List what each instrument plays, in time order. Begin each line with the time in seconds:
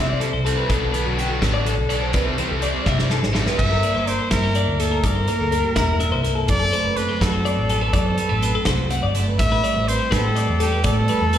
Already playing: picked electric bass C3, clean electric guitar C3 G3 E4, overdriven electric guitar E4
0.00 overdriven electric guitar C3 G3 C4
0.09 clean electric guitar D5
0.20 clean electric guitar E4 A4, closed hi-hat
0.33 picked electric bass C2, clean electric guitar C5
0.45 overdriven electric guitar C3 G3 C4 E4, clean electric guitar F#4 A4, closed hi-hat
0.57 clean electric guitar B4
0.68 picked electric bass B1, clean electric guitar B2 A4, overdriven electric guitar B2 F#3 B3 D4, kick, closed hi-hat
0.92 overdriven electric guitar B2 F#3 B3 D4, clean electric guitar D3 B4, closed hi-hat
1.05 picked electric bass B1, clean electric guitar F#4
1.17 overdriven electric guitar B2 F#3 B3 D4, clean electric guitar F#4 G4, closed hi-hat
1.29 clean electric guitar A4
1.41 picked electric bass A1, clean electric guitar B2 B4, overdriven electric guitar B2 F#3 B3 D4, kick, snare, closed hi-hat
1.54 clean electric guitar D5
1.65 clean electric guitar F#4 A4, closed hi-hat
1.78 picked electric bass B1
1.89 overdriven electric guitar B2 F#3 B3 D4, clean electric guitar A4 D5, closed hi-hat
2.02 clean electric guitar C5
2.13 picked electric bass C2, clean electric guitar C3 B4, overdriven electric guitar C3 G3 C4 E4, kick, closed hi-hat
2.26 clean electric guitar A4
2.37 overdriven electric guitar C3 G3 C4 E4, clean electric guitar E3 C5, closed hi-hat
2.50 picked electric bass C2, clean electric guitar A4
2.62 overdriven electric guitar C3 G3 C4 E4, clean electric guitar C4 D5, closed hi-hat
2.86 clean electric guitar G2 E5, picked electric bass C3, overdriven electric guitar C3 G3 C4 E4, kick, snare
2.99 clean electric guitar D5, snare
3.10 clean electric guitar C4 A4, snare
3.23 picked electric bass A1, clean electric guitar C5, snare
3.33 overdriven electric guitar C3 G3 C4 E4, clean electric guitar F#4 A4, snare
3.46 clean electric guitar B4, snare
3.57 picked electric bass G1, clean electric guitar G2, trumpet E5, kick, crash
3.72 clean electric guitar A#4
3.83 clean electric guitar A#3 D5, closed hi-hat
3.95 picked electric bass G1, clean electric guitar C5
4.06 clean electric guitar D4 A#4, trumpet C5, closed hi-hat
4.19 clean electric guitar C5
4.31 picked electric bass G2, clean electric guitar E4 A#4, trumpet A#4, kick, snare, closed hi-hat
4.43 clean electric guitar C5
4.55 clean electric guitar D4 D5, closed hi-hat
4.68 picked electric bass D2
4.80 clean electric guitar A#3 A4, trumpet A4, closed hi-hat
4.92 clean electric guitar A#4
5.03 clean electric guitar G2 D5, picked electric bass G2, trumpet A#4, kick, closed hi-hat
5.15 clean electric guitar C5
5.28 clean electric guitar A#3 A#4, closed hi-hat
5.40 picked electric bass D2, clean electric guitar A4
5.51 clean electric guitar D4 A#4, closed hi-hat
5.65 clean electric guitar G4
5.76 picked electric bass E1, clean electric guitar E4 A#4, kick, snare, closed hi-hat
6.00 clean electric guitar D4 E5, closed hi-hat
6.12 picked electric bass C2, clean electric guitar C5
6.23 clean electric guitar A#3 A#4, closed hi-hat
6.35 clean electric guitar A4
6.47 picked electric bass F#1, clean electric guitar F#2, trumpet D5, kick, closed hi-hat
6.59 clean electric guitar A4
6.72 clean electric guitar A3 C5, closed hi-hat
6.85 picked electric bass F#1, clean electric guitar B4
6.97 clean electric guitar C4 A4, trumpet B4, closed hi-hat
7.09 clean electric guitar C5
7.21 picked electric bass F#2, clean electric guitar F#4 B4, trumpet A4, kick, snare, closed hi-hat
7.33 clean electric guitar C5
7.45 clean electric guitar C4 D5, closed hi-hat
7.58 picked electric bass A1
7.69 clean electric guitar G3 A4, closed hi-hat
7.81 clean electric guitar A3 B4
7.93 picked electric bass F#2, clean electric guitar F#2 D5, trumpet A4, kick, closed hi-hat
8.06 clean electric guitar C5
8.17 clean electric guitar G3 B4, closed hi-hat
8.29 picked electric bass A1, clean electric guitar A3 A4
8.41 clean electric guitar C4 B4, closed hi-hat
8.55 clean electric guitar A4
8.65 picked electric bass C2, clean electric guitar F#4 C5, kick, snare, closed hi-hat
8.90 clean electric guitar C4 F#5, closed hi-hat
9.03 picked electric bass G1, clean electric guitar D5
9.15 clean electric guitar A3 C5, closed hi-hat
9.28 clean electric guitar B4
9.39 picked electric bass A1, clean electric guitar A2, trumpet E5, kick, closed hi-hat
9.52 clean electric guitar B4
9.64 clean electric guitar G3 D5, closed hi-hat
9.76 picked electric bass A1, clean electric guitar C5
9.88 clean electric guitar C4 B4, trumpet C5, closed hi-hat
9.99 clean electric guitar C5
10.11 picked electric bass A2, clean electric guitar G4 B4, trumpet A4, kick, snare, closed hi-hat
10.23 clean electric guitar C5
10.35 clean electric guitar C4 D5, closed hi-hat
10.49 picked electric bass E2
10.60 clean electric guitar G3 A4, trumpet G4, closed hi-hat
10.73 clean electric guitar B4
10.84 clean electric guitar A2 D5, picked electric bass A2, trumpet A4, kick, closed hi-hat
10.97 clean electric guitar C5
11.08 clean electric guitar G3 B4, closed hi-hat
11.21 picked electric bass E2, clean electric guitar A4
11.33 clean electric guitar C4 B4, closed hi-hat